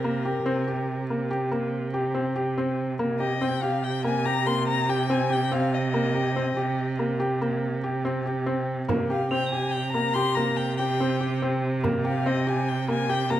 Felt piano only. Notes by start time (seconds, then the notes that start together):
0.04 A#3
0.25 G4
0.46 C4
0.67 G4
1.10 A#3
1.31 G4
1.51 A#3
1.94 G4
2.14 C4
2.36 G4
2.58 C4
2.99 A#3
3.20 G4
3.41 C4
3.63 G4
4.04 A#3
4.26 G4
4.46 A#3
4.89 G4
5.10 C4
5.30 G4
5.51 C4
5.94 A#3
6.15 G4
6.36 C4
6.57 G4
6.99 A#3
7.20 G4
7.41 A#3
7.84 G4
8.05 C4
8.26 G4
8.46 C4
8.88 A#3
9.10 G4
9.31 C4
9.52 G4
9.94 A#3
10.15 G4
10.37 A#3
10.79 G4
11.00 C4
11.20 G4
11.42 C4
11.83 A#3
12.05 G4
12.26 C4
12.47 G4
12.88 A#3
13.09 G4
13.30 A#3